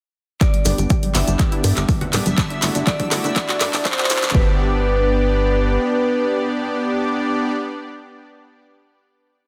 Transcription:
0.41 2.36 B3 medium
0.41 4.31 D4 medium
0.41 0.50 G4 medium
0.41 2.36 G4 medium
0.41 1.15 D5 medium
0.41 1.16 D5 loud
0.41 4.36 E5 medium
0.41 4.36 E6 medium
0.41 kick loud
0.41 clap soft
0.41 closed hi-hat medium
0.41 maracas soft
0.54 0.62 G3 medium
0.54 closed hi-hat soft
0.65 0.74 G1 medium
0.65 0.74 G3 medium
0.65 0.72 B3 medium
0.65 0.72 D4 medium
0.65 0.72 G4 medium
0.65 0.72 D5 medium
0.65 open hi-hat medium
0.65 high bongo medium
0.65 maracas medium
0.78 0.86 G1 medium
0.78 0.86 G3 medium
0.78 closed hi-hat soft
0.78 maracas medium
0.90 0.99 G4 medium
0.90 kick loud
0.90 closed hi-hat medium
0.90 maracas soft
1.03 1.11 G3 medium
1.03 closed hi-hat soft
1.03 high conga medium
1.15 1.23 G1 medium
1.15 1.61 B3 medium
1.15 1.61 D4 medium
1.15 1.24 F#4 medium
1.15 1.61 G4 medium
1.15 1.61 D5 medium
1.15 1.79 E5 medium
1.15 clap medium
1.15 open hi-hat loud
1.15 high bongo soft
1.15 maracas medium
1.28 1.35 G1 medium
1.28 1.36 G3 medium
1.28 closed hi-hat soft
1.28 maracas soft
1.39 1.48 G3 medium
1.39 kick loud
1.39 clap medium
1.39 closed hi-hat medium
1.39 maracas soft
1.52 1.60 E4 loud
1.52 closed hi-hat soft
1.64 1.72 G2 medium
1.64 1.73 G3 medium
1.64 1.70 B3 medium
1.64 1.70 D4 medium
1.64 1.70 G4 medium
1.64 1.70 D5 medium
1.64 open hi-hat loud
1.64 high bongo medium
1.64 maracas medium
1.77 1.84 G1 medium
1.77 1.85 G3 medium
1.77 clap medium
1.77 closed hi-hat soft
1.77 maracas medium
1.89 1.97 G3 medium
1.89 kick loud
1.89 open hi-hat medium
1.89 maracas soft
2.01 2.09 F#4 medium
2.01 closed hi-hat soft
2.01 low conga medium
2.13 2.21 D1 loud
2.13 2.22 G3 medium
2.13 2.19 B3 medium
2.13 2.20 D4 medium
2.13 2.19 G4 medium
2.13 2.19 D5 medium
2.13 clap medium
2.13 open hi-hat loud
2.13 high bongo medium
2.13 maracas medium
2.26 2.34 G1 medium
2.26 2.34 G3 medium
2.26 closed hi-hat soft
2.26 high conga medium
2.26 maracas medium
2.38 4.33 G3 medium
2.38 4.33 E4 medium
2.38 4.33 F#4 medium
2.38 4.33 A4 medium
2.38 2.46 A4 loud
2.38 kick loud
2.38 clap medium
2.38 closed hi-hat medium
2.38 maracas soft
2.50 2.59 D4 medium
2.50 closed hi-hat soft
2.62 2.71 G1 medium
2.62 2.69 A3 medium
2.62 2.71 D4 medium
2.62 2.69 E4 medium
2.62 2.69 F#4 medium
2.62 2.69 D5 medium
2.62 clap medium
2.62 open hi-hat loud
2.62 high bongo soft
2.62 maracas medium
2.75 2.83 G1 medium
2.75 2.83 D4 medium
2.75 closed hi-hat soft
2.75 maracas medium
2.87 2.96 A4 medium
2.87 3.76 D5 loud
2.87 3.76 D5 medium
2.87 kick loud
2.87 clap medium
2.87 closed hi-hat medium
2.87 maracas soft
3.00 3.08 D4 medium
3.00 kick medium
3.00 closed hi-hat soft
3.00 high conga medium
3.11 3.20 G1 medium
3.11 3.58 A3 medium
3.11 3.58 E4 medium
3.11 3.58 F#4 medium
3.11 3.20 F#4 medium
3.11 3.58 D5 medium
3.11 clap medium
3.11 open hi-hat loud
3.11 high bongo medium
3.11 maracas medium
3.24 3.32 G1 medium
3.24 3.32 D4 medium
3.24 closed hi-hat soft
3.24 low conga medium
3.24 maracas medium
3.36 3.45 D4 medium
3.36 kick loud
3.36 clap medium
3.36 closed hi-hat medium
3.36 maracas soft
3.49 3.57 F#4 loud
3.49 clap medium
3.49 closed hi-hat soft
3.61 3.69 G2 medium
3.61 3.67 A3 medium
3.61 3.69 D4 medium
3.61 3.67 E4 medium
3.61 3.67 F#4 medium
3.61 3.67 D5 medium
3.61 clap medium
3.61 open hi-hat loud
3.61 high bongo medium
3.61 maracas medium
3.73 3.81 G1 medium
3.73 3.82 D4 medium
3.73 clap medium
3.73 open hi-hat medium
3.73 maracas medium
3.85 3.94 D4 medium
3.85 4.30 C5 medium
3.85 4.30 C5 loud
3.85 kick loud
3.85 clap loud
3.85 closed hi-hat medium
3.85 maracas soft
3.92 clap medium
3.98 4.06 F#4 medium
3.98 clap medium
3.98 closed hi-hat soft
4.04 clap medium
4.10 4.18 G1 loud
4.10 4.16 A3 medium
4.10 4.19 D4 medium
4.10 4.16 E4 medium
4.10 4.16 F#4 medium
4.10 4.16 D5 medium
4.10 clap loud
4.10 open hi-hat loud
4.10 high bongo soft
4.10 maracas loud
4.16 clap loud
4.23 4.30 G1 medium
4.23 4.31 D4 medium
4.23 clap medium
4.23 closed hi-hat soft
4.23 high conga medium
4.23 low conga medium
4.23 maracas medium
4.29 clap loud
4.35 5.78 G1 medium
4.35 7.52 B3 medium
4.35 7.51 D4 medium
4.35 7.52 D4 medium
4.35 7.51 G4 medium
4.35 7.52 G4 medium
4.35 7.51 B4 loud
4.35 7.52 B4 medium
4.35 7.51 D5 medium
4.35 kick loud

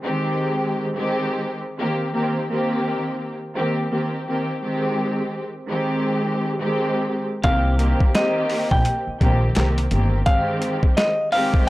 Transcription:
0.03 0.87 D#3 medium
0.03 0.87 G#3 medium
0.03 0.87 C4 medium
0.03 0.87 G4 loud
0.94 1.58 D#3 medium
0.94 1.59 G#3 loud
0.94 1.59 C4 medium
0.94 1.59 G4 loud
1.79 2.12 D#3 medium
1.79 2.12 A#3 medium
1.79 2.12 C4 medium
1.79 2.13 G4 loud
2.13 2.47 D#3 medium
2.13 2.47 A#3 medium
2.13 2.47 C4 medium
2.13 2.48 G4 medium
2.50 3.33 D#3 loud
2.50 3.34 A#3 medium
2.50 3.34 C4 medium
2.50 3.34 G4 loud
3.55 3.89 D#3 medium
3.55 3.89 A#3 medium
3.55 3.89 C4 medium
3.55 3.89 G4 loud
3.91 4.24 D#3 medium
3.91 4.24 A#3 medium
3.91 4.25 C4 medium
3.91 4.25 G4 medium
4.27 4.60 D#3 medium
4.27 4.60 A#3 medium
4.27 4.60 C4 medium
4.27 4.60 G4 medium
4.61 5.45 D#3 loud
4.61 5.45 G#3 medium
4.61 5.46 C4 medium
4.61 5.46 G4 loud
5.68 6.51 D#3 medium
5.68 6.52 G#3 medium
5.68 6.52 C4 medium
5.68 6.52 G4 loud
6.59 7.23 D#3 loud
6.59 7.23 G#3 medium
6.59 7.24 C4 medium
6.59 7.24 G4 loud
7.43 7.92 C2 loud
7.43 7.77 D#3 medium
7.43 7.77 A#3 medium
7.43 7.77 C4 medium
7.43 7.77 G4 loud
7.43 8.11 F5 loud
7.43 kick loud
7.43 closed hi-hat medium
7.78 8.12 D#3 loud
7.78 8.12 A#3 medium
7.78 8.12 C4 medium
7.78 8.12 G4 loud
7.78 closed hi-hat medium
8.00 kick loud
8.14 8.98 D#3 loud
8.14 8.98 A#3 medium
8.14 8.98 C4 medium
8.14 8.99 G4 loud
8.14 8.69 D#5 medium
8.14 snare loud
8.14 clap medium
8.14 closed hi-hat medium
8.50 open hi-hat medium
8.71 8.83 A#1 medium
8.71 10.22 G5 medium
8.71 kick medium
8.85 closed hi-hat loud
9.07 muted upright bass stroke soft
9.20 9.50 A#1 medium
9.20 9.54 D#3 loud
9.20 9.54 A#3 medium
9.20 9.54 C4 medium
9.20 9.54 G4 loud
9.20 kick loud
9.20 closed hi-hat medium
9.55 9.86 C2 medium
9.55 9.89 D#3 medium
9.55 9.89 A#3 medium
9.55 9.89 C4 medium
9.55 9.89 G4 medium
9.55 snare loud
9.55 clap medium
9.55 closed hi-hat medium
9.78 closed hi-hat medium
9.91 10.21 G1 medium
9.91 10.24 D#3 medium
9.91 10.25 A#3 medium
9.91 10.25 C4 medium
9.91 10.25 G4 medium
9.91 closed hi-hat medium
10.26 11.10 D#3 loud
10.26 11.10 G#3 medium
10.26 11.10 C4 medium
10.26 11.10 G4 loud
10.26 10.93 F5 loud
10.26 kick loud
10.26 closed hi-hat medium
10.62 closed hi-hat medium
10.83 kick loud
10.97 11.29 D#5 medium
10.97 snare loud
10.97 clap medium
10.97 closed hi-hat medium
11.32 11.69 D#3 loud
11.32 11.69 G#3 medium
11.32 11.69 C4 medium
11.32 11.69 G4 loud
11.32 11.64 F5 medium
11.32 open hi-hat medium
11.54 kick medium

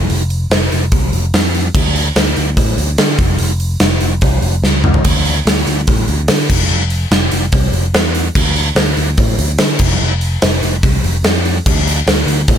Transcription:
0.10 0.45 F1 loud
0.10 open hi-hat medium
0.30 open hi-hat medium
0.50 0.68 F1 medium
0.50 snare loud
0.50 open hi-hat medium
0.72 0.89 F1 medium
0.72 open hi-hat medium
0.92 1.10 C2 medium
0.92 kick loud
0.92 open hi-hat medium
1.13 1.30 F1 medium
1.13 open hi-hat medium
1.34 1.69 F2 medium
1.34 snare loud
1.34 open hi-hat medium
1.54 open hi-hat medium
1.75 2.10 D2 medium
1.75 kick loud
1.75 crash loud
1.96 open hi-hat medium
2.16 2.33 D2 medium
2.16 snare loud
2.16 open hi-hat medium
2.37 2.54 D2 medium
2.37 open hi-hat medium
2.57 2.75 A2 medium
2.57 kick loud
2.57 open hi-hat medium
2.78 2.95 D2 medium
2.78 open hi-hat medium
2.98 3.16 D3 medium
2.98 snare loud
2.98 open hi-hat medium
3.19 3.36 F1 medium
3.19 kick loud
3.19 open hi-hat medium
3.39 3.75 F1 loud
3.39 open hi-hat medium
3.60 open hi-hat medium
3.80 3.99 F1 medium
3.80 snare loud
3.80 open hi-hat medium
4.01 4.19 F1 medium
4.01 open hi-hat medium
4.21 4.40 C2 medium
4.21 kick loud
4.21 open hi-hat medium
4.42 4.60 F1 loud
4.42 open hi-hat medium
4.62 4.98 C#2 loud
4.62 snare medium
4.84 mid tom medium
4.94 floor tom medium
5.04 5.40 D2 medium
5.04 kick loud
5.04 open hi-hat medium
5.04 crash loud
5.25 open hi-hat medium
5.46 5.63 D2 medium
5.46 snare loud
5.46 open hi-hat medium
5.67 5.84 D2 medium
5.67 open hi-hat medium
5.87 6.05 A2 medium
5.87 kick loud
5.87 open hi-hat medium
6.08 6.26 D2 medium
6.08 open hi-hat medium
6.28 6.51 D3 medium
6.28 snare loud
6.28 open hi-hat medium
6.50 6.67 F1 medium
6.50 kick loud
6.50 crash loud
6.69 7.05 F1 loud
6.90 open hi-hat medium
7.11 7.29 F1 medium
7.11 snare loud
7.11 open hi-hat medium
7.31 7.49 F1 medium
7.31 open hi-hat medium
7.52 7.70 C2 medium
7.52 kick loud
7.52 open hi-hat medium
7.72 7.90 F1 medium
7.72 open hi-hat medium
7.94 8.29 E2 medium
7.94 snare loud
7.94 open hi-hat medium
8.15 open hi-hat medium
8.35 8.70 D2 medium
8.35 kick loud
8.35 crash medium
8.56 open hi-hat medium
8.75 8.93 D2 medium
8.75 snare loud
8.75 open hi-hat medium
8.97 9.15 D2 medium
8.97 open hi-hat medium
9.17 9.35 A2 medium
9.17 kick loud
9.17 open hi-hat medium
9.39 9.56 D2 medium
9.39 open hi-hat medium
9.58 9.77 D3 medium
9.58 snare loud
9.58 open hi-hat medium
9.79 9.97 F1 medium
9.79 kick loud
9.79 crash loud
10.02 10.36 F1 medium
10.21 open hi-hat medium
10.42 10.60 F1 medium
10.42 snare loud
10.42 open hi-hat medium
10.63 10.80 F1 medium
10.63 open hi-hat medium
10.83 11.01 C2 medium
10.83 kick loud
10.83 open hi-hat medium
11.03 11.21 F1 medium
11.03 open hi-hat medium
11.23 11.59 F2 medium
11.23 snare loud
11.23 open hi-hat medium
11.45 open hi-hat medium
11.66 12.01 D2 medium
11.66 kick loud
11.66 crash loud
11.87 open hi-hat medium
12.07 12.24 D2 medium
12.07 snare loud
12.07 open hi-hat medium
12.26 12.45 D2 medium
12.26 open hi-hat medium
12.48 12.58 A2 medium
12.48 kick loud
12.48 open hi-hat medium

